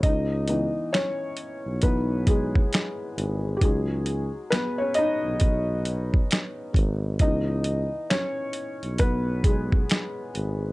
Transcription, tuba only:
X:1
M:4/4
L:1/16
Q:"Swing 16ths" 1/4=67
K:C#m
V:1 name="Tuba" clef=bass
C,,3 z4 B,,,4- B,,, z2 G,,,2 | C,,3 z4 B,,,4- B,,, z2 G,,,2 | C,,3 z4 B,,,4- B,,, z2 G,,,2 |]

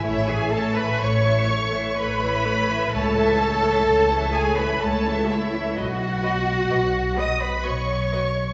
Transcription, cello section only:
X:1
M:3/4
L:1/16
Q:1/4=63
K:Alyd
V:1 name="Cello section"
E G A B c4 B4 | A6 G B A2 E2 | F6 d B c4 |]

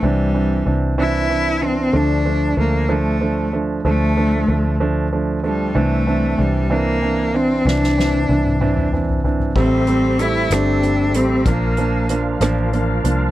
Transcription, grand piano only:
X:1
M:6/8
L:1/8
Q:3/8=63
K:Dm
V:1 name="Grand piano"
[E,CD] [E,CD] [E,CD] [E,CD] [E,CD] [E,CD] | [F,A,D] [F,A,D] [F,A,D] [F,A,D] [F,A,D] [F,A,D] | [F,A,D] [F,A,D] [F,A,D] [F,A,D] [F,A,D] [F,A,D] | [E,CD] [E,CD] [E,CD] [E,CD] [E,CD] [E,CD] |
[E,CD] [E,CD] [E,CD] [E,CD] [E,CD] [E,CD] | [G,A,C] [G,A,C] [G,A,C] [G,A,C] [G,A,C] [G,A,C] | [F,B,D] [F,B,D] [F,B,D] [F,B,D] [F,B,D] [F,B,D] |]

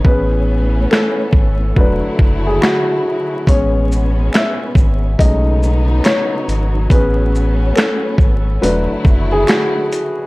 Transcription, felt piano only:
X:1
M:4/4
L:1/16
Q:"Swing 16ths" 1/4=70
K:A
V:1 name="Felt piano"
B4 A4 B3 G F3 z | c4 e4 ^d4 c4 | B4 A4 B3 G F3 z |]
V:2 name="Felt piano"
[B,CG]8 [F,A,D]6 z2 | [G,B,C]6 z2 [G,A,C^D]8 | [B,CG]6 z2 [F,A,D]2 z6 |]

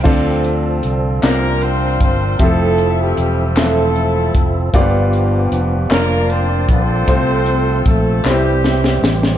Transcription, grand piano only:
X:1
M:6/8
L:1/8
Q:3/8=51
K:F
V:1 name="Grand piano"
[D,CFAd]3 [C,CFBd]3 | [F,CGAe]3 [F,CAe]3 | [G,,B,=B,FGd]3 [_B,DF_d]3 | [C,A,CFc]3 [C,G,CEc]3 |]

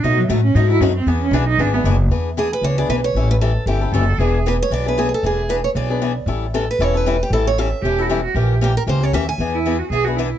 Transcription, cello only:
X:1
M:4/4
L:1/16
Q:"Swing" 1/4=231
K:Emix
V:1 name="Cello"
^D2 F,2 A,2 C2 D2 E2 C2 =C2 | B,2 C2 D2 ^D2 =D2 B,2 z4 | z16 | z12 A4 |
G3 z12 z | z16 | z16 | z8 =G3 F G2 F2 |
=G3 z12 z | z2 E4 F2 G2 F2 E4 |]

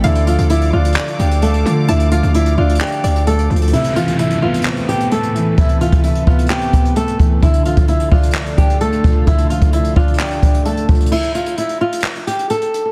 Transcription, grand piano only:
X:1
M:4/4
L:1/8
Q:1/4=130
K:Ddor
V:1 name="Grand piano"
D, F,2 D d D A, F, | D, F,2 D2 D A, F, | C, E,2 B, C B, A, E, | C, E,2 B, C B, A, E, |
D, F,2 D d D A, F, | D, F,2 D d D A, F, | z8 |]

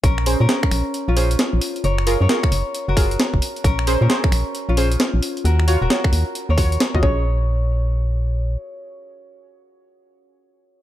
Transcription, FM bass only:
X:1
M:4/4
L:1/16
Q:"Swing 16ths" 1/4=133
K:Bbm
V:1 name="FM bass" clef=bass
B,,,3 B,, z2 B,,, z2 B,,,3 z B,,, z2 | G,,,3 G,, z2 G,,, z2 G,,,3 z G,,, z2 | B,,,3 B,, z2 B,,, z2 B,,,3 z B,,, z2 | E,,3 E,,, z2 E,, z2 E,,3 z E,, B,,,2- |
B,,,12 z4 | z16 |]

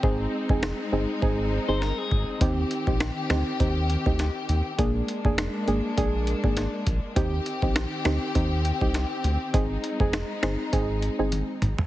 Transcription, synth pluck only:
X:1
M:4/4
L:1/16
Q:"Swing 16ths" 1/4=101
K:Eb
V:1 name="Synth pluck"
[CEA]3 [CEA] z2 [CEA] z [CEA]3 [CEA] z4 | [CEG]3 [CEG] z2 [CEG] z [CEG]3 [CEG] z4 | [B,DA]3 [B,DA] z2 [B,DA] z [B,DA]3 [B,DA] z4 | [CEG]3 [CEG] z2 [CEG] z [CEG]3 [CEG] z4 |
[CEA]3 [CEA] z2 [CEA] z [CEA]3 [CEA] z4 |]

